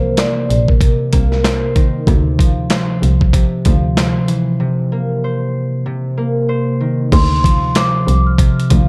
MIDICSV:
0, 0, Header, 1, 5, 480
1, 0, Start_track
1, 0, Tempo, 631579
1, 1575, Time_signature, 4, 2, 24, 8
1, 6754, End_track
2, 0, Start_track
2, 0, Title_t, "Vibraphone"
2, 0, Program_c, 0, 11
2, 0, Note_on_c, 0, 72, 114
2, 103, Note_off_c, 0, 72, 0
2, 138, Note_on_c, 0, 74, 85
2, 499, Note_off_c, 0, 74, 0
2, 516, Note_on_c, 0, 70, 69
2, 1542, Note_off_c, 0, 70, 0
2, 5415, Note_on_c, 0, 84, 95
2, 5866, Note_off_c, 0, 84, 0
2, 5900, Note_on_c, 0, 86, 84
2, 6260, Note_off_c, 0, 86, 0
2, 6282, Note_on_c, 0, 89, 77
2, 6754, Note_off_c, 0, 89, 0
2, 6754, End_track
3, 0, Start_track
3, 0, Title_t, "Harp"
3, 0, Program_c, 1, 46
3, 0, Note_on_c, 1, 48, 94
3, 0, Note_on_c, 1, 58, 85
3, 0, Note_on_c, 1, 72, 91
3, 138, Note_off_c, 1, 72, 0
3, 142, Note_on_c, 1, 72, 84
3, 601, Note_off_c, 1, 48, 0
3, 610, Note_on_c, 1, 48, 88
3, 851, Note_off_c, 1, 58, 0
3, 854, Note_on_c, 1, 58, 88
3, 1090, Note_off_c, 1, 72, 0
3, 1093, Note_on_c, 1, 72, 94
3, 1333, Note_on_c, 1, 51, 77
3, 1373, Note_off_c, 1, 48, 0
3, 1577, Note_on_c, 1, 48, 94
3, 1613, Note_off_c, 1, 51, 0
3, 1814, Note_on_c, 1, 53, 82
3, 2057, Note_off_c, 1, 72, 0
3, 2060, Note_on_c, 1, 72, 89
3, 2524, Note_off_c, 1, 48, 0
3, 2533, Note_on_c, 1, 48, 94
3, 2573, Note_off_c, 1, 53, 0
3, 2773, Note_on_c, 1, 53, 81
3, 3024, Note_off_c, 1, 72, 0
3, 3027, Note_on_c, 1, 72, 93
3, 3250, Note_on_c, 1, 52, 80
3, 3298, Note_off_c, 1, 58, 0
3, 3485, Note_off_c, 1, 48, 0
3, 3494, Note_on_c, 1, 48, 97
3, 3533, Note_off_c, 1, 52, 0
3, 3533, Note_off_c, 1, 53, 0
3, 3739, Note_on_c, 1, 58, 84
3, 3980, Note_off_c, 1, 72, 0
3, 3983, Note_on_c, 1, 72, 85
3, 4442, Note_off_c, 1, 48, 0
3, 4451, Note_on_c, 1, 48, 86
3, 4690, Note_off_c, 1, 58, 0
3, 4693, Note_on_c, 1, 58, 88
3, 4928, Note_off_c, 1, 72, 0
3, 4931, Note_on_c, 1, 72, 91
3, 5171, Note_on_c, 1, 51, 79
3, 5213, Note_off_c, 1, 48, 0
3, 5414, Note_on_c, 1, 48, 98
3, 5453, Note_off_c, 1, 51, 0
3, 5651, Note_on_c, 1, 53, 84
3, 5894, Note_off_c, 1, 72, 0
3, 5897, Note_on_c, 1, 72, 97
3, 6364, Note_off_c, 1, 48, 0
3, 6373, Note_on_c, 1, 48, 94
3, 6413, Note_off_c, 1, 53, 0
3, 6610, Note_on_c, 1, 53, 82
3, 6754, Note_off_c, 1, 48, 0
3, 6754, Note_off_c, 1, 53, 0
3, 6754, Note_off_c, 1, 58, 0
3, 6754, Note_off_c, 1, 72, 0
3, 6754, End_track
4, 0, Start_track
4, 0, Title_t, "Double bass"
4, 0, Program_c, 2, 43
4, 376, Note_on_c, 2, 34, 96
4, 583, Note_off_c, 2, 34, 0
4, 861, Note_on_c, 2, 36, 93
4, 1192, Note_off_c, 2, 36, 0
4, 1575, Note_on_c, 2, 38, 110
4, 1990, Note_off_c, 2, 38, 0
4, 2295, Note_on_c, 2, 36, 100
4, 2503, Note_off_c, 2, 36, 0
4, 2781, Note_on_c, 2, 38, 84
4, 3112, Note_off_c, 2, 38, 0
4, 5414, Note_on_c, 2, 38, 111
4, 5830, Note_off_c, 2, 38, 0
4, 6135, Note_on_c, 2, 36, 97
4, 6343, Note_off_c, 2, 36, 0
4, 6620, Note_on_c, 2, 38, 85
4, 6754, Note_off_c, 2, 38, 0
4, 6754, End_track
5, 0, Start_track
5, 0, Title_t, "Drums"
5, 131, Note_on_c, 9, 42, 91
5, 136, Note_on_c, 9, 38, 115
5, 143, Note_on_c, 9, 39, 96
5, 207, Note_off_c, 9, 42, 0
5, 212, Note_off_c, 9, 38, 0
5, 219, Note_off_c, 9, 39, 0
5, 384, Note_on_c, 9, 42, 77
5, 460, Note_off_c, 9, 42, 0
5, 520, Note_on_c, 9, 36, 93
5, 596, Note_off_c, 9, 36, 0
5, 613, Note_on_c, 9, 36, 88
5, 617, Note_on_c, 9, 42, 95
5, 689, Note_off_c, 9, 36, 0
5, 693, Note_off_c, 9, 42, 0
5, 856, Note_on_c, 9, 42, 88
5, 860, Note_on_c, 9, 36, 91
5, 932, Note_off_c, 9, 42, 0
5, 936, Note_off_c, 9, 36, 0
5, 1003, Note_on_c, 9, 38, 35
5, 1079, Note_off_c, 9, 38, 0
5, 1098, Note_on_c, 9, 38, 106
5, 1104, Note_on_c, 9, 42, 86
5, 1105, Note_on_c, 9, 39, 82
5, 1174, Note_off_c, 9, 38, 0
5, 1180, Note_off_c, 9, 42, 0
5, 1181, Note_off_c, 9, 39, 0
5, 1336, Note_on_c, 9, 42, 72
5, 1337, Note_on_c, 9, 36, 86
5, 1412, Note_off_c, 9, 42, 0
5, 1413, Note_off_c, 9, 36, 0
5, 1574, Note_on_c, 9, 36, 111
5, 1580, Note_on_c, 9, 42, 80
5, 1650, Note_off_c, 9, 36, 0
5, 1656, Note_off_c, 9, 42, 0
5, 1817, Note_on_c, 9, 36, 89
5, 1827, Note_on_c, 9, 42, 86
5, 1893, Note_off_c, 9, 36, 0
5, 1903, Note_off_c, 9, 42, 0
5, 2051, Note_on_c, 9, 42, 90
5, 2056, Note_on_c, 9, 38, 116
5, 2063, Note_on_c, 9, 39, 94
5, 2127, Note_off_c, 9, 42, 0
5, 2132, Note_off_c, 9, 38, 0
5, 2139, Note_off_c, 9, 39, 0
5, 2304, Note_on_c, 9, 42, 75
5, 2380, Note_off_c, 9, 42, 0
5, 2440, Note_on_c, 9, 36, 95
5, 2516, Note_off_c, 9, 36, 0
5, 2533, Note_on_c, 9, 36, 88
5, 2537, Note_on_c, 9, 42, 96
5, 2609, Note_off_c, 9, 36, 0
5, 2613, Note_off_c, 9, 42, 0
5, 2775, Note_on_c, 9, 42, 89
5, 2780, Note_on_c, 9, 36, 92
5, 2851, Note_off_c, 9, 42, 0
5, 2856, Note_off_c, 9, 36, 0
5, 3018, Note_on_c, 9, 38, 110
5, 3024, Note_on_c, 9, 42, 85
5, 3025, Note_on_c, 9, 39, 88
5, 3094, Note_off_c, 9, 38, 0
5, 3100, Note_off_c, 9, 42, 0
5, 3101, Note_off_c, 9, 39, 0
5, 3255, Note_on_c, 9, 42, 73
5, 3331, Note_off_c, 9, 42, 0
5, 5413, Note_on_c, 9, 36, 112
5, 5414, Note_on_c, 9, 49, 96
5, 5419, Note_on_c, 9, 42, 80
5, 5489, Note_off_c, 9, 36, 0
5, 5490, Note_off_c, 9, 49, 0
5, 5495, Note_off_c, 9, 42, 0
5, 5656, Note_on_c, 9, 36, 92
5, 5667, Note_on_c, 9, 42, 91
5, 5732, Note_off_c, 9, 36, 0
5, 5743, Note_off_c, 9, 42, 0
5, 5892, Note_on_c, 9, 42, 97
5, 5896, Note_on_c, 9, 38, 122
5, 5903, Note_on_c, 9, 39, 97
5, 5968, Note_off_c, 9, 42, 0
5, 5972, Note_off_c, 9, 38, 0
5, 5979, Note_off_c, 9, 39, 0
5, 6143, Note_on_c, 9, 42, 80
5, 6219, Note_off_c, 9, 42, 0
5, 6372, Note_on_c, 9, 36, 94
5, 6376, Note_on_c, 9, 42, 100
5, 6448, Note_off_c, 9, 36, 0
5, 6452, Note_off_c, 9, 42, 0
5, 6533, Note_on_c, 9, 42, 59
5, 6609, Note_off_c, 9, 42, 0
5, 6615, Note_on_c, 9, 42, 94
5, 6620, Note_on_c, 9, 36, 93
5, 6691, Note_off_c, 9, 42, 0
5, 6696, Note_off_c, 9, 36, 0
5, 6754, End_track
0, 0, End_of_file